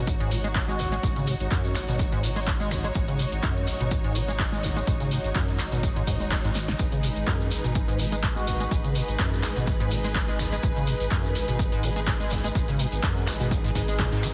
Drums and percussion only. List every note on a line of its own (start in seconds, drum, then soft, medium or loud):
0.07 kick loud
0.07 closed hi-hat medium
0.07 shekere medium
0.20 closed hi-hat soft
0.20 shekere soft
0.31 open hi-hat loud
0.31 shekere medium
0.44 closed hi-hat soft
0.44 shekere soft
0.55 kick loud
0.55 clap loud
0.55 closed hi-hat medium
0.55 shekere soft
0.69 shekere soft
0.79 open hi-hat loud
0.79 shekere medium
0.92 closed hi-hat soft
0.92 shekere soft
1.03 kick loud
1.03 closed hi-hat medium
1.03 shekere medium
1.16 closed hi-hat soft
1.16 shekere soft
1.27 open hi-hat loud
1.27 shekere medium
1.40 closed hi-hat soft
1.40 shekere soft
1.51 kick loud
1.51 clap loud
1.51 closed hi-hat medium
1.51 shekere medium
1.64 shekere soft
1.75 finger snap medium
1.75 clap medium
1.75 open hi-hat loud
1.75 shekere medium
1.88 closed hi-hat soft
1.88 shekere soft
1.99 kick loud
1.99 closed hi-hat medium
1.99 shekere soft
2.12 closed hi-hat soft
2.12 shekere soft
2.23 open hi-hat loud
2.23 shekere medium
2.36 open hi-hat medium
2.36 shekere soft
2.47 kick loud
2.47 clap loud
2.47 closed hi-hat medium
2.47 shekere medium
2.60 closed hi-hat soft
2.60 shekere soft
2.71 finger snap medium
2.71 open hi-hat loud
2.71 shekere medium
2.84 closed hi-hat soft
2.84 shekere soft
2.94 kick loud
2.94 closed hi-hat medium
2.94 shekere soft
3.08 closed hi-hat soft
3.08 shekere soft
3.19 open hi-hat loud
3.19 shekere medium
3.32 closed hi-hat medium
3.32 shekere soft
3.43 kick loud
3.43 clap loud
3.43 closed hi-hat medium
3.43 shekere soft
3.57 shekere soft
3.67 open hi-hat loud
3.67 shekere medium
3.80 closed hi-hat medium
3.80 shekere soft
3.91 kick loud
3.91 closed hi-hat medium
3.91 shekere medium
4.04 closed hi-hat soft
4.04 shekere soft
4.15 open hi-hat loud
4.15 shekere medium
4.28 closed hi-hat soft
4.28 shekere soft
4.39 kick loud
4.39 clap loud
4.39 closed hi-hat medium
4.39 shekere soft
4.53 shekere soft
4.63 open hi-hat medium
4.63 shekere medium
4.76 closed hi-hat soft
4.76 shekere soft
4.87 kick loud
4.87 closed hi-hat medium
4.87 shekere medium
5.00 closed hi-hat soft
5.00 shekere soft
5.11 open hi-hat loud
5.11 shekere medium
5.24 closed hi-hat medium
5.24 shekere soft
5.35 kick loud
5.35 clap loud
5.35 closed hi-hat medium
5.35 shekere medium
5.48 closed hi-hat soft
5.48 shekere soft
5.59 finger snap medium
5.59 clap medium
5.59 open hi-hat loud
5.59 shekere medium
5.72 closed hi-hat medium
5.72 shekere soft
5.83 kick loud
5.83 closed hi-hat medium
5.83 shekere soft
5.96 closed hi-hat soft
5.96 shekere soft
6.07 kick medium
6.07 open hi-hat loud
6.07 shekere medium
6.20 open hi-hat medium
6.20 shekere soft
6.31 kick loud
6.31 clap loud
6.31 closed hi-hat medium
6.31 shekere medium
6.44 closed hi-hat soft
6.44 shekere soft
6.54 snare medium
6.54 open hi-hat medium
6.54 shekere medium
6.68 snare medium
6.68 closed hi-hat soft
6.68 shekere soft
6.79 kick loud
6.79 closed hi-hat medium
6.79 shekere soft
6.92 closed hi-hat soft
6.92 shekere soft
7.03 open hi-hat loud
7.03 shekere medium
7.16 closed hi-hat medium
7.16 shekere soft
7.27 kick loud
7.27 clap loud
7.27 closed hi-hat medium
7.27 shekere soft
7.40 shekere soft
7.51 open hi-hat loud
7.51 shekere loud
7.64 closed hi-hat medium
7.64 shekere soft
7.75 kick loud
7.75 closed hi-hat medium
7.75 shekere soft
7.88 closed hi-hat soft
7.88 shekere soft
7.99 open hi-hat loud
7.99 shekere loud
8.12 closed hi-hat medium
8.12 shekere soft
8.23 kick loud
8.23 clap loud
8.23 closed hi-hat medium
8.23 shekere medium
8.36 shekere soft
8.47 open hi-hat loud
8.47 shekere medium
8.60 closed hi-hat medium
8.60 shekere soft
8.71 kick loud
8.71 closed hi-hat medium
8.71 shekere medium
8.84 closed hi-hat soft
8.84 shekere soft
8.95 open hi-hat loud
8.95 shekere loud
9.08 closed hi-hat medium
9.08 shekere soft
9.19 kick loud
9.19 clap loud
9.19 closed hi-hat medium
9.19 shekere soft
9.33 shekere soft
9.43 finger snap medium
9.43 clap medium
9.43 open hi-hat loud
9.43 shekere medium
9.56 closed hi-hat medium
9.56 shekere soft
9.67 kick loud
9.67 closed hi-hat medium
9.67 shekere medium
9.80 closed hi-hat soft
9.80 shekere soft
9.91 open hi-hat loud
9.91 shekere loud
10.04 open hi-hat medium
10.04 shekere soft
10.15 kick loud
10.15 clap loud
10.15 closed hi-hat medium
10.15 shekere soft
10.28 closed hi-hat soft
10.28 shekere soft
10.39 finger snap medium
10.39 open hi-hat loud
10.39 shekere loud
10.52 closed hi-hat soft
10.52 shekere soft
10.63 kick loud
10.63 closed hi-hat medium
10.63 shekere medium
10.76 closed hi-hat soft
10.76 shekere soft
10.87 open hi-hat loud
10.87 shekere loud
11.00 closed hi-hat soft
11.00 shekere soft
11.11 kick loud
11.11 clap loud
11.11 closed hi-hat medium
11.11 shekere medium
11.25 shekere soft
11.35 open hi-hat loud
11.35 shekere medium
11.48 closed hi-hat soft
11.48 shekere soft
11.59 kick loud
11.59 closed hi-hat medium
11.59 shekere medium
11.72 closed hi-hat soft
11.72 shekere soft
11.83 open hi-hat loud
11.83 shekere loud
11.96 closed hi-hat soft
11.96 shekere soft
12.07 kick loud
12.07 clap loud
12.07 closed hi-hat medium
12.07 shekere medium
12.20 shekere soft
12.30 open hi-hat loud
12.30 shekere loud
12.44 closed hi-hat soft
12.44 shekere soft
12.55 kick loud
12.55 closed hi-hat medium
12.55 shekere medium
12.68 closed hi-hat soft
12.68 shekere soft
12.79 open hi-hat loud
12.79 shekere medium
12.92 closed hi-hat soft
12.92 shekere soft
13.03 kick loud
13.03 clap loud
13.03 closed hi-hat medium
13.03 shekere medium
13.17 shekere soft
13.27 finger snap medium
13.27 clap medium
13.27 open hi-hat loud
13.27 shekere medium
13.40 closed hi-hat soft
13.40 shekere soft
13.51 kick loud
13.51 closed hi-hat medium
13.51 shekere medium
13.64 closed hi-hat soft
13.64 shekere soft
13.75 kick medium
13.75 open hi-hat loud
13.75 shekere medium
13.88 open hi-hat medium
13.88 shekere soft
13.99 kick loud
13.99 clap loud
13.99 closed hi-hat medium
13.99 shekere soft
14.12 closed hi-hat soft
14.12 shekere soft
14.23 finger snap medium
14.23 open hi-hat loud
14.23 shekere loud